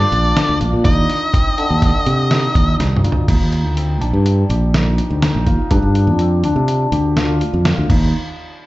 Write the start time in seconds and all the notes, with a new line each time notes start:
Already playing: C4 D4 F4 D5
0.12 A#1, closed hi-hat
0.36 D4, snare, closed hi-hat
0.49 D2
0.61 A#1 F4, closed hi-hat
0.73 A#2
0.85 D#2 D#4 D#5, kick, closed hi-hat
1.10 snare, closed hi-hat
1.34 C4, kick, closed hi-hat
1.58 D3, closed hi-hat
1.70 D#2
1.82 kick, snare, closed hi-hat
2.06 C3 G4, closed hi-hat
2.31 D#4, snare, closed hi-hat
2.55 D#2, kick, closed hi-hat
2.80 C2 D#4, snare, closed hi-hat
2.96 mid tom
3.04 D2 F4, closed hi-hat
3.12 floor tom
3.28 D#2 D#4, kick, closed hi-hat, crash
3.40 D#2
3.52 closed hi-hat
3.65 D2
3.76 C4, closed hi-hat
4.01 A#1 D4, closed hi-hat
4.13 G2
4.26 closed hi-hat
4.50 A#1 G4, closed hi-hat
4.74 D#4, snare, closed hi-hat
4.98 closed hi-hat
5.10 D2
5.22 D#4, snare, closed hi-hat
5.35 A#1
5.47 D#2 F4, kick, closed hi-hat
5.71 G2 D4, kick, closed hi-hat
5.82 G2
5.95 closed hi-hat
6.07 F2
6.19 C4, closed hi-hat
6.44 D2 D4, closed hi-hat
6.56 C3
6.68 closed hi-hat
6.92 D2 G4, closed hi-hat
7.17 F4, snare, closed hi-hat
7.41 closed hi-hat
7.53 F2
7.65 F4, snare, closed hi-hat
7.78 D2
7.90 D#2 D#4, kick, crash